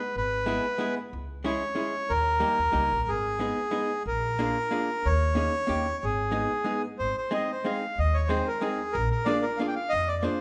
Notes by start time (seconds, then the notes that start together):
Already playing: B4
0.16 G#1 B4
0.46 G#3 B3 E4 G#4
0.78 G#3 B3 E4 G#4
1.13 C#2
1.44 G#3 C#4 E4 G#4 C#5
1.75 G#3 C#4 E4 G#4
2.10 D#2 A#4
2.40 G3 A#3 D#4 G4
2.59 D#2
2.72 C#2 G3 A#3 D#4 G4
2.92 A#1
3.07 G#1 G#4
3.39 G#3 B3 D#4 G#4
3.71 G#3 B3 D#4 G#4
4.06 A#1 A#4
4.39 A#3 D4 F4 G#4
4.71 A#3 D4 F4 G#4
5.06 D#2 C#5
5.35 A#3 C#4 D#4 G#4
5.67 D#2 A#3 C#4 D#4 G4
6.03 G#1 G#4
6.31 G#3 B3 D#4 G#4
6.64 G#3 B3 D#4 G#4
6.99 G#1 C5
7.18 C5
7.31 G#3 C4 D#4 G#4 D#5
7.52 C5
7.64 G#3 C4 D#4 G#4 F5
7.98 D#2 D#5
8.14 C#5
8.28 G#3 C4 D#4 G#4 C5
8.47 A#4
8.61 G#3 C4 D#4 G#4
8.93 A#1 A#4
9.11 A#4
9.25 A#3 D4 F4 G#4 D5
9.42 A#4
9.57 A#3 D4 F4 F5
9.62 G#4
9.68 G5
9.75 F5
9.89 F2 D#5
10.08 D5
10.23 A#3 D4 F4 G#4 C5